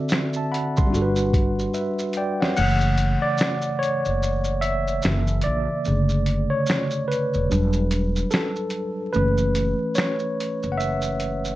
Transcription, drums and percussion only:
0.09 snare, shaker
0.13 finger snap
0.33 shaker
0.54 closed hi-hat, shaker
0.77 kick, shaker
0.94 shaker
1.16 shaker
1.33 kick, closed hi-hat, shaker
1.59 shaker
1.74 shaker
1.99 shaker
2.13 closed hi-hat, shaker
2.42 snare
2.56 crash, shaker
2.81 shaker
2.98 closed hi-hat, shaker
3.38 snare, shaker
3.42 finger snap
3.62 shaker
3.83 closed hi-hat, shaker
4.05 shaker
4.23 shaker
4.44 shaker
4.62 closed hi-hat, shaker
4.87 shaker
5.02 finger snap, snare, shaker
5.27 shaker
5.41 closed hi-hat, shaker
5.85 shaker
6.09 shaker
6.26 closed hi-hat, shaker
6.66 snare, shaker
6.71 finger snap
6.91 shaker
7.12 closed hi-hat, shaker
7.34 shaker
7.51 shaker
7.73 shaker
7.91 closed hi-hat, shaker
8.16 shaker
8.31 finger snap, snare, shaker
8.56 shaker
8.70 closed hi-hat, shaker
9.14 shaker
9.38 shaker
9.55 closed hi-hat, shaker
9.95 snare, shaker
9.99 finger snap
10.19 shaker
10.40 closed hi-hat, shaker
10.63 shaker
10.80 shaker
11.02 shaker
11.20 closed hi-hat, shaker
11.45 shaker

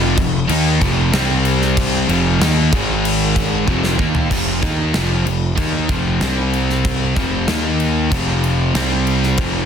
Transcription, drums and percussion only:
0.17 kick, crash
0.49 crash
0.81 kick, crash
1.13 snare, crash
1.45 crash
1.62 snare
1.77 kick, crash
2.09 crash
2.41 snare, crash
2.73 kick, crash
3.05 crash
3.36 kick, crash
3.68 kick
3.84 snare
3.99 kick
4.15 floor tom
4.31 kick, crash
4.63 kick, snare, crash
4.94 snare, crash
5.27 crash
5.58 kick, crash
5.89 kick, crash
6.21 snare, crash
6.54 crash
6.70 snare
6.85 kick, crash
7.16 kick, snare, crash
7.48 snare, crash
7.80 crash
8.12 kick, crash
8.44 crash
8.75 snare, crash
9.07 crash
9.23 snare
9.38 kick, crash

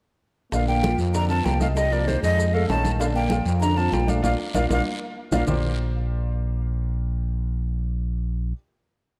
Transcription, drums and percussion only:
0.52 high bongo, high conga, long guiro, maracas
0.68 high bongo, high conga, maracas
0.83 high bongo, high conga, short guiro, maracas
0.98 high bongo, high conga, short guiro, maracas
1.14 high bongo, high conga, long guiro, maracas
1.30 maracas
1.45 high bongo, low bongo, high conga, short guiro, maracas
1.61 high bongo, high conga, short guiro, maracas
1.77 high bongo, high conga, long guiro, maracas
1.92 high bongo, high conga, maracas
2.08 high bongo, high conga, short guiro, maracas
2.24 high bongo, high conga, short guiro, maracas
2.39 high bongo, high conga, long guiro, maracas
2.54 high conga, maracas
2.69 high bongo, low bongo, high conga, short guiro, maracas
2.85 high bongo, high conga, short guiro, maracas
3.00 high bongo, high conga, long guiro, maracas
3.15 high bongo, high conga, maracas
3.30 high bongo, high conga, short guiro, maracas
3.46 high bongo, high conga, short guiro, maracas
3.62 high bongo, high conga, long guiro, maracas
3.77 high conga, maracas
3.92 high bongo, low bongo, high conga, short guiro, maracas
4.08 high bongo, high conga, short guiro, maracas
4.24 low bongo, high conga, long guiro, maracas
4.54 low bongo, high conga, maracas
4.70 low bongo, high conga, long guiro, maracas
5.32 low bongo, high conga, long guiro, maracas
5.47 low bongo, low conga, long guiro, maracas

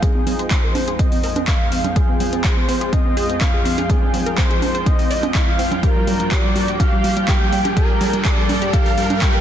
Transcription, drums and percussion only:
0.02 kick, closed hi-hat, low conga
0.27 open hi-hat, low conga
0.39 closed hi-hat
0.51 kick, clap, closed hi-hat
0.75 open hi-hat, high conga
0.88 closed hi-hat
0.99 kick, closed hi-hat
1.12 open hi-hat
1.23 open hi-hat
1.36 closed hi-hat, high conga
1.47 kick, clap, closed hi-hat
1.72 open hi-hat
1.84 closed hi-hat, high conga, low conga
1.96 kick, closed hi-hat, low conga
2.20 open hi-hat, low conga
2.33 closed hi-hat
2.44 kick, clap, closed hi-hat
2.69 open hi-hat
2.81 closed hi-hat
2.93 kick, closed hi-hat, high conga
3.17 open hi-hat
3.30 closed hi-hat
3.41 kick, clap, closed hi-hat
3.65 open hi-hat
3.78 closed hi-hat, high conga
3.90 kick, closed hi-hat, low conga
4.14 open hi-hat, low conga
4.26 closed hi-hat
4.38 kick, clap, closed hi-hat
4.51 closed hi-hat
4.62 open hi-hat, high conga
4.75 closed hi-hat
4.86 kick, closed hi-hat
4.99 open hi-hat
5.11 open hi-hat
5.23 closed hi-hat, high conga
5.35 kick, clap, closed hi-hat
5.59 open hi-hat
5.71 closed hi-hat, high conga, low conga
5.83 kick, closed hi-hat, low conga
6.07 open hi-hat, low conga
6.20 closed hi-hat
6.31 kick, clap, closed hi-hat
6.56 open hi-hat
6.68 closed hi-hat
6.80 kick, closed hi-hat, high conga
7.04 open hi-hat
7.17 closed hi-hat
7.28 kick, clap, closed hi-hat
7.52 open hi-hat
7.65 closed hi-hat, high conga
7.77 kick, closed hi-hat, low conga
8.01 open hi-hat, low conga
8.13 closed hi-hat
8.25 kick, clap, closed hi-hat
8.49 open hi-hat, high conga
8.62 closed hi-hat
8.73 kick, closed hi-hat
8.86 open hi-hat
8.98 open hi-hat
9.10 closed hi-hat, high conga
9.22 kick, clap, closed hi-hat

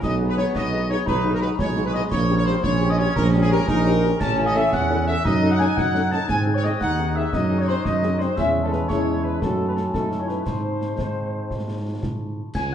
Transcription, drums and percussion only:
0.03 concert bass drum, snare, crash
0.38 snare
0.55 concert bass drum, snare
1.07 concert bass drum, snare
1.42 snare
1.59 concert bass drum, snare
1.77 snare
1.94 snare
2.12 concert bass drum, snare, crash
2.46 snare
2.64 concert bass drum, snare
3.16 concert bass drum, snare
3.68 concert bass drum, snare
4.21 concert bass drum, snare, crash
4.55 snare
4.73 concert bass drum, snare
5.25 concert bass drum, snare
5.60 snare
5.77 concert bass drum, snare
5.95 snare
6.12 snare
6.29 concert bass drum, snare, crash
6.64 snare
6.81 concert bass drum, snare
7.33 concert bass drum, snare
7.68 snare
7.85 concert bass drum, snare
8.03 snare
8.20 snare
8.38 concert bass drum, snare, crash
8.73 snare
8.90 concert bass drum, snare
9.42 concert bass drum, snare
9.77 snare
9.94 concert bass drum, snare
10.12 snare
10.29 snare
10.46 concert bass drum, snare, crash
10.81 snare
10.98 concert bass drum, snare
11.51 concert bass drum, snare
12.03 concert bass drum, snare
12.55 concert bass drum, snare, crash

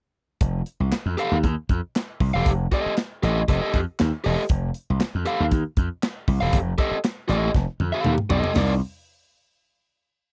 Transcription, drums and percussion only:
0.41 kick, closed hi-hat
0.66 closed hi-hat
0.92 snare, clap, closed hi-hat
1.18 closed hi-hat
1.43 kick, closed hi-hat
1.69 kick, closed hi-hat
1.95 snare, clap, closed hi-hat
2.20 kick, open hi-hat
2.46 kick, closed hi-hat
2.72 kick, closed hi-hat
2.97 snare, clap, closed hi-hat
3.23 closed hi-hat
3.48 kick, closed hi-hat
3.73 kick, closed hi-hat
3.99 snare, clap, closed hi-hat
4.24 open hi-hat
4.49 kick, closed hi-hat
4.74 closed hi-hat
5.00 snare, clap, closed hi-hat
5.26 closed hi-hat
5.51 kick, closed hi-hat
5.77 kick, closed hi-hat
6.03 snare, clap, closed hi-hat
6.28 kick, open hi-hat
6.53 kick, closed hi-hat
6.78 kick, closed hi-hat
7.04 snare, clap, closed hi-hat
7.29 closed hi-hat
7.54 kick, snare
7.80 high tom
8.04 mid tom
8.18 mid tom
8.30 floor tom
8.44 floor tom
8.56 snare, floor tom, open hi-hat

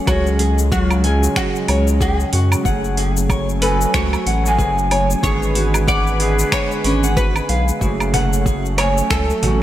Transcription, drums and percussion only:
0.07 kick, cabasa, low woodblock
0.26 cabasa
0.39 open hi-hat
0.59 cabasa
0.72 kick, cabasa
0.91 cabasa, low woodblock
1.04 open hi-hat
1.23 cabasa
1.36 finger snap, kick, cabasa
1.56 cabasa
1.68 open hi-hat, low woodblock
1.88 cabasa
2.01 kick, cabasa
2.20 cabasa
2.33 open hi-hat
2.52 cabasa, low woodblock
2.65 kick, cabasa
2.84 cabasa
2.97 open hi-hat
3.17 cabasa
3.30 kick, cabasa, low woodblock
3.49 cabasa
3.62 open hi-hat
3.81 cabasa
3.94 finger snap, kick, cabasa
4.13 cabasa, low woodblock
4.27 open hi-hat
4.46 cabasa
4.59 kick, cabasa
4.78 cabasa
4.91 open hi-hat, low woodblock
5.11 cabasa
5.23 kick, cabasa
5.43 cabasa
5.55 open hi-hat
5.74 cabasa, low woodblock
5.88 kick, cabasa
6.07 cabasa
6.20 open hi-hat
6.39 cabasa
6.52 finger snap, kick, cabasa, low woodblock
6.71 cabasa
6.84 open hi-hat
7.04 cabasa
7.17 kick, cabasa
7.36 cabasa, low woodblock
7.49 open hi-hat
7.68 cabasa
7.81 kick, cabasa
8.00 cabasa, low woodblock
8.14 cajon bass, open hi-hat
8.33 cabasa
8.46 kick, cabasa
8.66 cabasa
8.78 cajon slap, open hi-hat, low woodblock
8.98 cabasa
9.10 finger snap, kick, cabasa
9.30 cabasa
9.43 cajon bass, cajon slap, open hi-hat

